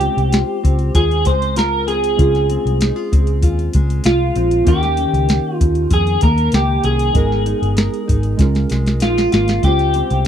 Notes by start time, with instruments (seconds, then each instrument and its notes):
Already playing: nylon-string guitar G#3 F4, synth keys G#3 C#4 F4 C5, clean electric guitar G4
0.01 nylon-string guitar C4, closed hi-hat
0.17 picked electric bass C2, closed hi-hat
0.32 nylon-string guitar F4, snare, closed hi-hat
0.63 picked electric bass C#2, nylon-string guitar C4, kick, closed hi-hat
0.79 closed hi-hat
0.95 picked electric bass D#2, nylon-string guitar F4, clean electric guitar G#4, kick, closed hi-hat
1.11 closed hi-hat
1.25 picked electric bass C#2, nylon-string guitar G#3, clean electric guitar C5, kick, closed hi-hat
1.42 closed hi-hat
1.56 nylon-string guitar F4, clean electric guitar A#4, snare, closed hi-hat
1.87 nylon-string guitar C4, clean electric guitar G#4, closed hi-hat
2.04 closed hi-hat
2.17 picked electric bass C#2, synth keys G#3 C#4 F4, nylon-string guitar F4, kick, closed hi-hat
2.22 synth keys G#4
2.35 snare, closed hi-hat
2.49 nylon-string guitar C4, closed hi-hat
2.66 picked electric bass C2, closed hi-hat
2.81 nylon-string guitar D#4, snare, closed hi-hat
2.96 nylon-string guitar F4
3.12 picked electric bass C#2, nylon-string guitar C4, kick, closed hi-hat
3.27 closed hi-hat
3.42 picked electric bass D#2, nylon-string guitar F4, kick, closed hi-hat
3.59 closed hi-hat
3.73 picked electric bass C#2, nylon-string guitar G#3, kick, closed hi-hat
3.90 closed hi-hat
4.04 picked electric bass C2, nylon-string guitar F4, clean electric guitar F4, snare, closed hi-hat
4.36 picked electric bass A#1, nylon-string guitar C4, closed hi-hat
4.51 closed hi-hat
4.64 picked electric bass D#2, nylon-string guitar D#3 G4, synth keys A#3 C#4 D#4, clean electric guitar G4, kick, closed hi-hat
4.69 synth keys A#4
4.83 snare, closed hi-hat
4.97 nylon-string guitar C#4, closed hi-hat
5.14 picked electric bass C#2, closed hi-hat
5.29 nylon-string guitar G4, snare, closed hi-hat
5.55 clean electric guitar F4
5.60 picked electric bass D#2, nylon-string guitar C#4, kick, closed hi-hat
5.75 closed hi-hat
5.91 picked electric bass F2, clean electric guitar G#4, kick, closed hi-hat
6.07 closed hi-hat
6.21 picked electric bass D#2, nylon-string guitar A#3, clean electric guitar A#4, kick, closed hi-hat
6.38 closed hi-hat
6.52 picked electric bass C#2, clean electric guitar G4, snare, closed hi-hat
6.84 picked electric bass C2, nylon-string guitar C#4, clean electric guitar G#4, closed hi-hat
6.99 closed hi-hat
7.13 picked electric bass G#1, synth keys G#3 B3 D#4, nylon-string guitar G#3 A#4, kick, closed hi-hat
7.18 synth keys A#4
7.32 snare
7.46 nylon-string guitar D#4, closed hi-hat
7.62 picked electric bass G1, closed hi-hat
7.77 nylon-string guitar A#4, snare, closed hi-hat
7.94 closed hi-hat
8.07 picked electric bass G#1, nylon-string guitar D#4, kick, closed hi-hat
8.23 closed hi-hat
8.37 picked electric bass C#2, synth keys G#3 C#4 F4, kick, snare, closed hi-hat
8.42 synth keys A#4
8.55 snare, closed hi-hat
8.70 picked electric bass C2, nylon-string guitar G#3, snare, closed hi-hat
8.86 snare, closed hi-hat
9.00 picked electric bass A#1, nylon-string guitar D#4, clean electric guitar F4, snare, closed hi-hat
9.17 nylon-string guitar F4, snare, closed hi-hat
9.32 picked electric bass G#1, nylon-string guitar A#3, clean electric guitar F4, snare, closed hi-hat
9.48 snare, closed hi-hat
9.62 picked electric bass C#2, synth keys G#3 C#4 F4, nylon-string guitar F4, clean electric guitar G4, analog synth pad F5, kick, closed hi-hat
9.67 synth keys C5
9.79 snare, closed hi-hat
9.94 nylon-string guitar C4, closed hi-hat
10.10 picked electric bass C2, closed hi-hat